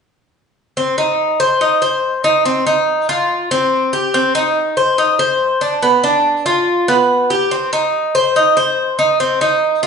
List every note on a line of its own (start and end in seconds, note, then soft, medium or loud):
0.77 0.97 C4 medium
0.98 1.39 D#4 medium
1.40 1.60 C5 medium
1.61 1.81 D#4 medium
1.82 2.23 C5 medium
2.24 2.45 D#4 medium
2.45 2.66 C4 medium
2.67 3.07 D#4 medium
3.09 3.50 F4 medium
3.51 3.92 C4 medium
3.93 4.13 G4 medium
4.14 4.34 C4 medium
4.35 4.76 D#4 medium
4.77 4.98 C5 medium
4.98 5.19 D#4 medium
5.19 5.60 C5 medium
5.61 5.82 D4 medium
5.83 6.03 B3 medium
6.04 6.45 D4 medium
6.46 6.87 F4 medium
6.88 7.29 B3 medium
7.30 7.51 G4 medium
7.51 7.72 C4 medium
7.73 8.14 D#4 medium
8.15 8.35 C5 medium
8.36 8.56 D#4 medium
8.57 8.98 C5 medium
8.99 9.19 D#4 medium
9.20 9.41 C4 medium
9.41 9.82 D#4 medium
9.83 9.87 F4 medium